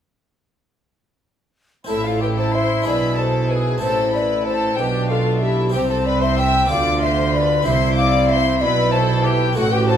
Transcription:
1.84 2.81 C4 medium
1.84 2.82 E4 medium
1.84 3.78 E4 medium
1.84 2.04 E4 medium
1.84 2.82 A4 medium
1.89 2.82 A1 medium
1.89 2.82 A2 medium
1.89 2.04 A4 medium
1.89 2.05 E5 loud
2.05 2.21 F4 medium
2.05 2.21 A4 medium
2.05 2.22 F5 medium
2.21 2.37 G4 medium
2.21 2.28 B4 medium
2.21 2.28 G5 medium
2.37 2.54 A4 medium
2.37 2.57 C5 medium
2.37 2.54 A5 medium
2.53 2.85 C5 medium
2.53 2.87 E5 medium
2.53 2.86 C6 loud
2.82 3.80 B1 medium
2.82 3.80 B2 medium
2.82 3.77 D4 medium
2.82 3.78 E4 soft
2.82 3.79 G#4 medium
2.82 3.17 B4 medium
2.82 3.17 B5 loud
2.86 3.78 B2 medium
2.86 3.18 D5 medium
3.16 3.49 A4 medium
3.16 3.52 C5 medium
3.16 3.49 A5 medium
3.48 3.82 G#4 medium
3.48 3.82 B4 medium
3.48 3.81 G#5 medium
3.78 4.76 A1 medium
3.78 4.76 A2 medium
3.78 5.68 C4 medium
3.78 5.68 E4 medium
3.78 5.69 A4 medium
3.78 4.13 A4 medium
3.78 4.13 A5 loud
3.82 4.74 A2 medium
3.82 4.77 E4 medium
3.82 4.14 C5 medium
4.13 4.47 B4 medium
4.13 4.46 D5 medium
4.13 4.45 B5 medium
4.46 4.78 A4 medium
4.46 4.78 C5 medium
4.46 4.78 A5 loud
4.78 5.72 B1 medium
4.78 5.72 B2 medium
4.78 5.70 B2 medium
4.78 5.74 D4 medium
4.78 5.10 G4 medium
4.78 5.12 B4 medium
4.78 5.10 G5 loud
5.09 5.42 F4 medium
5.09 5.44 A4 medium
5.09 5.41 F5 medium
5.41 5.73 E4 medium
5.41 5.74 G4 medium
5.41 5.73 E5 medium
5.70 6.65 C4 medium
5.70 6.66 E4 medium
5.70 5.89 G4 medium
5.70 6.66 G4 medium
5.70 5.79 G5 loud
5.74 6.70 C2 medium
5.74 6.70 C3 medium
5.74 6.66 C3 medium
5.74 6.68 C4 medium
5.74 5.90 C5 loud
5.90 5.96 A4 medium
5.90 6.08 C5 medium
5.90 6.06 A5 medium
6.05 6.22 B4 loud
6.05 6.21 D5 medium
6.05 6.22 B5 loud
6.21 6.37 C5 medium
6.21 6.38 E5 loud
6.21 6.37 C6 loud
6.37 6.70 E5 loud
6.37 6.70 G5 loud
6.37 6.70 E6 loud
6.66 7.61 B3 medium
6.66 7.62 F4 medium
6.66 7.63 G4 medium
6.66 7.01 D6 loud
6.70 7.64 D2 medium
6.70 7.62 D3 medium
6.70 7.64 D3 medium
6.70 7.66 F4 medium
6.70 7.02 D5 loud
6.70 7.04 F5 loud
7.02 7.34 C5 medium
7.02 7.34 E5 medium
7.02 7.33 C6 loud
7.34 7.67 B4 medium
7.34 7.66 D5 loud
7.34 7.66 B5 loud
7.63 8.62 C2 medium
7.63 9.52 C4 medium
7.63 9.52 E4 medium
7.63 8.60 E4 medium
7.63 9.53 G4 medium
7.63 7.96 E5 loud
7.63 7.98 C6 loud
7.67 8.62 C3 medium
7.67 8.58 C3 medium
7.67 7.99 C5 medium
7.97 8.31 D5 loud
7.97 8.30 F5 loud
7.97 8.29 D6 loud
8.28 8.63 C5 medium
8.28 8.63 E5 loud
8.28 8.61 C6 loud
8.60 9.57 B1 loud
8.60 9.53 B2 medium
8.60 9.58 B2 medium
8.60 9.55 E4 medium
8.60 8.94 B4 loud
8.60 8.92 D5 medium
8.60 8.92 B5 loud
8.92 9.26 A4 loud
8.92 9.24 C5 medium
8.92 9.25 A5 loud
9.24 9.57 G4 loud
9.24 9.57 B4 loud
9.24 9.57 G5 loud
9.53 9.97 C4 medium
9.53 9.97 E4 medium
9.53 9.97 F#4 medium
9.53 9.63 F#4 loud
9.53 9.73 A4 loud
9.57 9.97 A1 loud
9.57 9.97 A2 medium
9.57 9.97 F#4 medium
9.57 9.73 F#5 loud
9.72 9.88 G4 medium
9.72 9.88 B4 medium
9.72 9.89 G5 loud
9.88 9.97 A4 loud
9.88 9.97 C5 loud
9.88 9.97 A5 loud

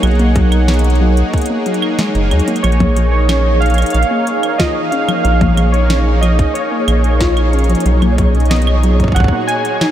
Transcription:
0.00 1.23 B1 loud
0.00 0.19 F#3 medium
0.00 7.86 A#3 medium
0.00 9.91 D#4 medium
0.00 9.91 G#4 medium
0.00 9.91 C#5 medium
0.00 2.64 F#5 medium
0.00 closed hi-hat medium
0.00 claves medium
0.11 closed hi-hat soft
0.15 closed hi-hat soft
0.19 0.30 A#3 medium
0.19 closed hi-hat soft
0.36 0.51 F#3 medium
0.36 kick loud
0.36 closed hi-hat medium
0.52 closed hi-hat medium
0.52 claves medium
0.68 0.84 B3 medium
0.68 snare loud
0.68 closed hi-hat medium
0.74 closed hi-hat medium
0.79 closed hi-hat medium
0.84 closed hi-hat soft
0.90 closed hi-hat soft
0.95 closed hi-hat soft
1.01 1.16 F#3 medium
1.17 closed hi-hat medium
1.33 kick loud
1.33 closed hi-hat soft
1.38 closed hi-hat soft
1.42 closed hi-hat medium
1.46 closed hi-hat medium
1.50 1.61 A#3 medium
1.66 1.82 F#3 medium
1.66 closed hi-hat medium
1.74 closed hi-hat medium
1.82 claves medium
1.99 2.09 G#3 loud
1.99 snare loud
1.99 closed hi-hat medium
2.15 2.33 F#1 loud
2.15 closed hi-hat soft
2.31 2.41 D#2 medium
2.31 2.38 F#3 medium
2.31 closed hi-hat medium
2.31 claves medium
2.39 closed hi-hat medium
2.48 2.54 A#3 medium
2.48 closed hi-hat medium
2.56 closed hi-hat medium
2.63 3.84 A#1 loud
2.63 2.80 F3 medium
2.63 3.10 C#5 medium
2.63 9.91 C#5 medium
2.63 closed hi-hat medium
2.63 claves medium
2.72 closed hi-hat soft
2.80 2.91 A#3 medium
2.80 kick loud
2.80 closed hi-hat soft
2.80 low conga medium
2.96 3.12 F3 medium
2.96 closed hi-hat medium
3.11 3.63 C#5 medium
3.29 3.45 C#4 medium
3.29 snare loud
3.29 closed hi-hat medium
3.29 claves medium
3.60 3.77 F3 medium
3.60 3.92 F5 loud
3.60 closed hi-hat soft
3.66 7.86 F5 medium
3.66 closed hi-hat soft
3.70 closed hi-hat soft
3.74 closed hi-hat medium
3.78 closed hi-hat medium
3.78 claves medium
3.82 closed hi-hat medium
3.86 closed hi-hat medium
3.90 4.61 F5 loud
3.90 closed hi-hat medium
3.94 4.04 A#1 medium
3.94 closed hi-hat medium
4.03 closed hi-hat soft
4.11 4.21 A#3 medium
4.27 closed hi-hat medium
4.43 closed hi-hat medium
4.43 claves medium
4.58 4.70 F4 loud
4.58 4.92 D#5 loud
4.58 kick loud
4.58 snare loud
4.58 closed hi-hat medium
4.91 5.03 C#4 medium
4.91 5.22 F5 loud
4.91 closed hi-hat medium
5.09 5.24 F3 medium
5.09 closed hi-hat medium
5.09 low conga medium
5.09 claves medium
5.23 6.45 A#1 loud
5.23 5.40 F3 medium
5.23 5.70 F5 loud
5.23 closed hi-hat medium
5.41 5.52 A#3 medium
5.41 kick loud
5.41 closed hi-hat soft
5.41 low conga medium
5.45 low conga medium
5.49 low conga medium
5.53 low conga soft
5.57 5.73 F3 medium
5.57 closed hi-hat medium
5.57 low conga soft
5.57 claves medium
5.62 low conga soft
5.66 low conga soft
5.70 6.23 C#5 medium
5.70 low conga soft
5.74 closed hi-hat medium
5.90 6.06 C#4 medium
5.90 snare loud
5.90 closed hi-hat medium
6.21 6.38 F3 medium
6.21 6.56 D#5 medium
6.21 closed hi-hat medium
6.21 claves medium
6.39 kick loud
6.39 closed hi-hat medium
6.54 7.16 C#5 medium
6.54 closed hi-hat medium
6.72 6.82 A#3 medium
6.88 7.75 A#1 medium
6.88 closed hi-hat medium
6.88 claves medium
7.04 closed hi-hat medium
7.19 7.31 F4 loud
7.19 7.65 C#5 medium
7.19 kick loud
7.19 snare loud
7.19 closed hi-hat medium
7.37 closed hi-hat soft
7.37 claves medium
7.53 7.64 C#4 medium
7.53 closed hi-hat soft
7.59 closed hi-hat soft
7.64 closed hi-hat medium
7.69 7.85 F3 medium
7.69 closed hi-hat medium
7.75 closed hi-hat medium
7.80 closed hi-hat medium
7.86 9.06 B1 loud
7.86 9.91 A#2 medium
7.86 8.01 F#3 medium
7.86 closed hi-hat medium
8.02 8.13 A#3 medium
8.02 closed hi-hat soft
8.02 low conga medium
8.02 claves medium
8.18 8.34 F#3 medium
8.18 kick loud
8.18 closed hi-hat medium
8.35 closed hi-hat soft
8.40 closed hi-hat soft
8.46 9.11 D#5 medium
8.46 closed hi-hat soft
8.51 8.66 B3 medium
8.51 snare loud
8.51 closed hi-hat medium
8.56 closed hi-hat soft
8.62 closed hi-hat soft
8.67 claves medium
8.83 8.99 F#3 medium
8.83 closed hi-hat medium
9.00 kick medium
9.00 closed hi-hat medium
9.04 kick medium
9.08 kick medium
9.12 9.46 F#5 loud
9.12 kick medium
9.16 9.26 B1 medium
9.16 kick medium
9.16 closed hi-hat medium
9.16 claves medium
9.20 9.91 F#4 medium
9.20 kick loud
9.24 kick loud
9.28 kick loud
9.32 9.43 A#3 medium
9.47 9.91 G#5 loud
9.47 closed hi-hat medium
9.65 closed hi-hat medium
9.81 9.91 D#4 loud
9.81 snare loud
9.81 closed hi-hat medium
9.81 claves medium

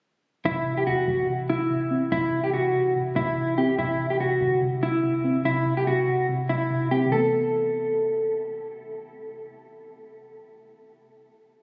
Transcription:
0.45 0.88 A1 loud
0.45 0.65 C3 medium
0.45 0.75 E4 loud
0.66 0.86 C3 medium
0.78 0.85 G4 medium
0.87 1.07 E2 loud
0.87 1.07 C3 medium
0.87 1.26 F#4 medium
1.08 2.08 A1 loud
1.08 1.27 C3 medium
1.29 1.48 C3 medium
1.49 1.69 C3 medium
1.49 2.08 E4 medium
1.70 2.11 C3 medium
1.91 2.95 C4 medium
2.12 3.12 A1 loud
2.12 2.31 C3 loud
2.12 2.42 E4 loud
2.33 2.52 C3 medium
2.44 2.52 G4 medium
2.53 2.73 C3 medium
2.53 2.93 F#4 medium
2.74 2.94 C3 medium
2.95 3.15 C3 medium
3.16 3.76 A1 loud
3.16 3.35 C3 medium
3.16 3.55 E4 medium
3.37 3.77 C3 medium
3.58 3.79 C4 loud
3.58 3.75 G4 medium
3.78 4.38 A1 loud
3.78 3.98 C3 loud
3.78 4.09 E4 loud
3.99 4.19 C3 medium
4.10 4.18 G4 medium
4.20 4.40 C3 medium
4.20 4.59 F#4 medium
4.41 5.41 G1 loud
4.41 4.61 C3 medium
4.62 4.81 C3 medium
4.83 5.02 C3 medium
4.83 5.42 E4 medium
5.03 5.44 C3 medium
5.24 6.29 C4 medium
5.45 5.65 C3 loud
5.45 5.75 E4 loud
5.66 5.86 C3 medium
5.77 5.85 G4 medium
5.87 6.07 C3 medium
5.87 6.26 F#4 medium
6.08 6.28 C3 medium
6.29 6.48 C3 loud
6.49 6.69 C3 medium
6.49 6.89 E4 medium
6.70 7.05 C3 medium
6.91 7.12 C4 medium
6.91 7.08 G4 medium
7.06 10.52 C3 medium
7.06 10.56 E3 medium
7.12 10.60 A3 medium
7.12 8.33 A4 medium
7.18 10.64 B3 medium

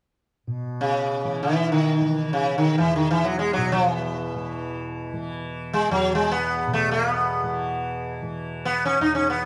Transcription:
0.47 3.57 B2 soft
0.81 1.42 C#3 medium
1.24 2.01 E3 medium
1.43 1.71 E3 medium
1.72 2.33 D#3 medium
2.01 4.36 E3 soft
2.33 2.57 C#3 medium
2.58 2.77 D#3 medium
2.78 5.90 E2 soft
2.78 2.95 E3 medium
2.96 3.10 D#3 medium
3.11 3.25 E3 medium
3.24 3.38 F#3 medium
3.39 3.53 G#3 medium
3.53 3.70 F#3 medium
3.57 6.67 B2 medium
3.72 3.91 F3 medium
3.91 5.37 E3 medium
4.36 5.13 E3 soft
5.13 7.43 E3 medium
5.73 5.91 G#3 medium
5.91 9.00 E2 medium
5.91 6.15 F#3 medium
6.15 6.32 G#3 medium
6.31 6.73 B3 medium
6.67 9.45 B2 soft
6.73 6.91 A3 medium
6.91 7.10 A#3 medium
7.10 8.13 B3 medium
7.43 8.22 E3 soft
8.22 9.45 E3 soft
8.65 8.85 B3 medium
8.85 9.01 C#4 medium
9.01 9.45 E2 soft
9.01 9.14 D#4 medium
9.15 9.29 C#4 medium
9.30 9.45 B3 medium

